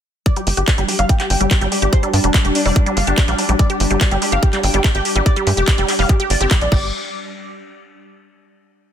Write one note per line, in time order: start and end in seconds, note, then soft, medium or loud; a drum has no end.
0.26 0.34 G3 medium
0.26 6.72 G3 medium
0.26 6.72 D4 medium
0.26 0.31 D5 loud
0.26 kick loud
0.26 closed hi-hat medium
0.36 0.40 G3 loud
0.36 0.42 G4 medium
0.36 closed hi-hat medium
0.47 0.53 G1 medium
0.47 0.55 G#3 medium
0.47 0.52 G4 medium
0.47 open hi-hat loud
0.57 0.63 G1 medium
0.57 0.63 G4 medium
0.57 closed hi-hat medium
0.68 0.73 D5 medium
0.68 kick loud
0.68 clap loud
0.68 closed hi-hat medium
0.78 0.84 G1 medium
0.78 0.84 G3 loud
0.78 0.83 G4 medium
0.78 closed hi-hat medium
0.88 0.97 G3 medium
0.88 0.94 G4 medium
0.88 open hi-hat loud
0.99 1.05 G1 medium
0.99 1.02 G3 loud
0.99 1.04 F5 medium
0.99 closed hi-hat medium
1.09 1.18 G#3 medium
1.09 1.15 G4 medium
1.09 kick loud
1.09 closed hi-hat medium
1.20 1.25 G4 medium
1.20 1.25 G4 loud
1.20 clap soft
1.20 closed hi-hat medium
1.30 1.36 G1 medium
1.30 1.36 G5 medium
1.30 open hi-hat loud
1.41 1.47 G1 medium
1.41 1.46 G3 loud
1.41 1.46 G4 medium
1.41 closed hi-hat medium
1.51 1.59 G3 medium
1.51 1.56 G4 medium
1.51 kick loud
1.51 clap loud
1.51 closed hi-hat medium
1.61 1.68 G#1 medium
1.61 1.65 G3 loud
1.61 1.67 G5 medium
1.61 closed hi-hat medium
1.72 1.80 G#3 medium
1.72 1.77 G4 medium
1.72 open hi-hat loud
1.82 1.88 G#1 medium
1.82 1.88 G4 loud
1.82 1.88 G4 medium
1.82 closed hi-hat medium
1.93 1.98 C5 loud
1.93 kick loud
1.93 closed hi-hat medium
2.03 2.09 G3 loud
2.03 2.08 D4 medium
2.03 closed hi-hat medium
2.13 2.20 G2 medium
2.13 2.22 G3 medium
2.13 2.19 D4 medium
2.13 open hi-hat loud
2.24 2.30 F1 medium
2.24 2.27 G3 loud
2.24 2.29 D4 medium
2.24 closed hi-hat medium
2.34 2.43 G#3 medium
2.34 2.40 D5 loud
2.34 kick loud
2.34 clap loud
2.34 closed hi-hat medium
2.45 2.51 F1 medium
2.45 2.50 D4 medium
2.45 2.50 G4 loud
2.45 closed hi-hat medium
2.55 2.60 D4 medium
2.55 open hi-hat loud
2.66 2.72 F1 medium
2.66 2.71 G3 loud
2.66 2.71 D5 medium
2.66 open hi-hat medium
2.76 2.84 G3 medium
2.76 2.81 D4 medium
2.76 kick loud
2.76 closed hi-hat medium
2.86 2.90 G3 loud
2.86 2.92 D4 medium
2.86 closed hi-hat soft
2.97 3.03 G1 medium
2.97 3.05 G#3 medium
2.97 3.02 F5 medium
2.97 open hi-hat loud
3.07 3.13 G1 medium
3.07 3.13 D4 medium
3.07 3.13 G4 loud
3.07 closed hi-hat medium
3.18 3.23 D4 medium
3.18 kick loud
3.18 clap loud
3.18 closed hi-hat medium
3.28 3.34 A#1 medium
3.28 3.34 G3 loud
3.28 3.33 F5 medium
3.28 closed hi-hat medium
3.38 3.47 G3 medium
3.38 3.44 D4 medium
3.38 open hi-hat loud
3.49 3.55 A#1 medium
3.49 3.52 G3 loud
3.49 3.54 D4 medium
3.49 closed hi-hat medium
3.59 3.68 G#3 medium
3.59 3.65 D5 loud
3.59 kick loud
3.59 closed hi-hat medium
3.70 3.75 G4 loud
3.70 3.75 G4 medium
3.70 closed hi-hat medium
3.80 3.86 G1 loud
3.80 3.86 G4 medium
3.80 open hi-hat loud
3.91 3.97 G1 medium
3.91 3.96 G3 loud
3.91 3.96 G4 medium
3.91 closed hi-hat soft
4.01 4.09 G3 medium
4.01 4.06 D5 loud
4.01 kick loud
4.01 clap loud
4.01 closed hi-hat medium
4.11 4.18 G1 medium
4.11 4.15 G3 loud
4.11 4.17 G4 medium
4.11 closed hi-hat medium
4.22 4.30 G#3 medium
4.22 4.27 G4 medium
4.22 open hi-hat loud
4.32 4.38 G1 medium
4.32 4.38 G4 loud
4.32 4.38 F5 medium
4.32 closed hi-hat medium
4.43 4.48 G4 medium
4.43 kick loud
4.43 closed hi-hat medium
4.53 4.59 G3 loud
4.53 4.58 G4 medium
4.53 clap soft
4.53 closed hi-hat medium
4.63 4.70 G1 medium
4.63 4.72 G3 medium
4.63 4.69 G5 medium
4.63 open hi-hat loud
4.74 4.80 G1 medium
4.74 4.77 G3 loud
4.74 4.79 G4 medium
4.74 closed hi-hat soft
4.84 4.93 G#3 medium
4.84 4.90 G4 medium
4.84 kick loud
4.84 clap loud
4.84 closed hi-hat medium
4.95 5.01 G#1 medium
4.95 5.00 G4 loud
4.95 5.00 G5 medium
4.95 closed hi-hat medium
5.05 5.11 G4 medium
5.05 open hi-hat loud
5.16 5.22 G#1 medium
5.16 5.21 G3 loud
5.16 5.21 G4 medium
5.16 closed hi-hat medium
5.26 5.34 G3 medium
5.26 5.31 D5 loud
5.26 kick loud
5.26 closed hi-hat medium
5.36 5.40 G3 loud
5.36 5.42 G4 medium
5.36 closed hi-hat soft
5.47 5.53 G2 medium
5.47 5.55 G#3 medium
5.47 5.52 G4 medium
5.47 open hi-hat loud
5.57 5.63 F1 medium
5.57 5.63 G4 loud
5.57 5.63 G4 medium
5.57 closed hi-hat medium
5.68 5.73 D5 loud
5.68 kick loud
5.68 clap loud
5.68 closed hi-hat medium
5.78 5.84 F1 medium
5.78 5.84 G3 loud
5.78 5.83 G4 medium
5.78 closed hi-hat soft
5.88 5.97 G3 medium
5.88 5.94 G4 medium
5.88 clap soft
5.88 open hi-hat loud
5.99 6.05 F1 medium
5.99 6.02 G3 loud
5.99 6.04 F5 medium
5.99 open hi-hat medium
6.09 6.18 G#3 medium
6.09 6.15 G4 medium
6.09 kick loud
6.09 closed hi-hat medium
6.20 6.25 G4 loud
6.20 6.25 G4 medium
6.20 closed hi-hat soft
6.30 6.36 G1 loud
6.30 6.36 D5 medium
6.30 open hi-hat loud
6.41 6.47 G1 medium
6.41 6.49 C4 loud
6.41 6.44 G4 loud
6.41 6.46 G4 medium
6.41 closed hi-hat medium
6.51 6.59 G3 medium
6.51 6.56 G4 medium
6.51 kick loud
6.51 clap loud
6.51 closed hi-hat medium
6.61 6.68 A#1 medium
6.61 6.67 F3 medium
6.61 6.67 D5 medium
6.61 closed hi-hat medium
6.72 6.91 G1 loud
6.72 6.91 G3 medium
6.72 6.87 D5 medium
6.72 kick loud
6.72 crash medium